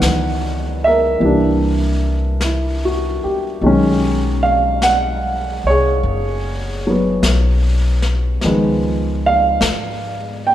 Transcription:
0.00 1.17 C#2 medium
0.00 1.23 D#3 soft
0.00 1.19 E3 soft
0.00 1.21 F#3 soft
0.00 1.22 B3 soft
0.00 0.88 F#5 medium
0.00 brush sweep soft
0.00 snare soft
0.00 hi-hat pedal soft
0.84 3.23 A#4 medium
0.84 3.21 E5 medium
1.20 3.21 C2 medium
1.20 3.62 E3 soft
1.20 3.62 G3 soft
1.20 3.63 A#3 soft
1.20 brush sweep soft
1.25 3.64 D4 soft
2.41 3.22 E4 soft
2.41 brush sweep soft
2.41 snare soft
2.41 hi-hat pedal soft
2.85 3.47 F#4 soft
3.24 3.87 G4 soft
3.24 muted upright bass stroke soft
3.61 5.61 B1 medium
3.61 8.42 D#3 soft
3.61 6.85 F#3 soft
3.61 8.43 G#3 soft
3.61 brush sweep soft
3.66 8.44 C#4 soft
4.43 4.84 F5 medium
4.82 5.62 F#5 medium
4.82 brush sweep soft
4.82 snare soft
4.82 hi-hat pedal soft
5.64 6.00 C2 medium
5.64 8.02 C#5 medium
5.70 8.03 G#4 soft
6.03 7.19 F#1 medium
6.03 brush sweep soft
6.87 8.43 F#3 soft
6.87 8.44 B3 soft
7.23 8.38 B1 medium
7.23 brush sweep soft
7.23 snare soft
7.23 hi-hat pedal soft
8.02 snare soft
8.41 9.58 C#2 medium
8.41 10.55 D#3 soft
8.41 10.55 F3 soft
8.41 10.55 G#3 soft
8.41 brush sweep soft
8.41 snare soft
8.45 10.55 B3 soft
9.26 10.49 F5 medium
9.61 10.55 G#2 medium
9.61 brush sweep soft
9.61 snare soft
9.61 hi-hat pedal soft
10.47 10.55 G5 medium

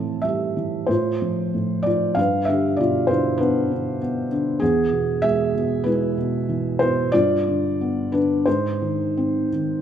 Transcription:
0.00 0.86 A2 medium
0.00 0.55 E3 soft
0.00 0.19 C4 medium
0.00 0.24 A4 medium
0.22 0.88 G3 soft
0.22 0.86 G4 medium
0.22 0.91 E5 medium
0.57 0.89 E3 soft
0.87 1.53 A2 medium
0.87 1.88 C5 medium
0.91 1.83 F4 medium
1.22 1.84 F3 soft
1.54 2.16 A2 soft
1.83 2.17 F3 soft
1.83 2.16 F4 medium
1.83 2.17 D5 medium
2.15 4.57 G2 medium
2.15 2.47 B4 medium
2.15 2.48 F5 medium
2.45 3.08 D3 medium
2.45 2.79 E5 medium
2.49 2.78 G4 medium
2.77 3.97 B2 soft
2.77 3.08 F4 medium
2.77 3.09 D5 medium
3.07 3.70 D3 medium
3.07 3.39 E4 medium
3.07 3.37 C5 medium
3.38 4.00 B3 medium
3.38 4.27 D4 medium
3.38 4.26 B4 medium
3.72 4.31 D3 medium
4.02 4.60 B3 soft
4.32 4.61 D3 medium
4.60 7.09 E2 medium
4.60 5.19 B3 medium
4.60 5.23 G#4 medium
4.92 5.53 B2 soft
5.22 5.85 G#3 medium
5.22 5.82 G#4 medium
5.22 5.87 E5 loud
5.55 6.16 B2 medium
5.84 7.10 G#3 medium
5.84 6.77 E4 medium
5.84 6.83 B4 medium
6.17 6.80 B2 medium
6.49 7.12 E3 medium
6.79 7.13 B2 medium
6.79 7.11 E4 medium
6.79 7.13 C5 medium
7.12 8.43 G2 medium
7.12 8.09 F4 medium
7.12 8.15 D5 loud
7.48 8.12 D3 medium
7.81 8.45 B3 medium
8.12 8.46 D3 medium
8.12 8.45 D4 medium
8.12 8.47 B4 medium
8.46 9.82 G#2 medium
8.46 9.48 D#4 medium
8.46 9.47 C5 medium
8.82 9.51 D#3 medium
9.17 9.82 C4 medium
9.53 9.82 D#3 medium

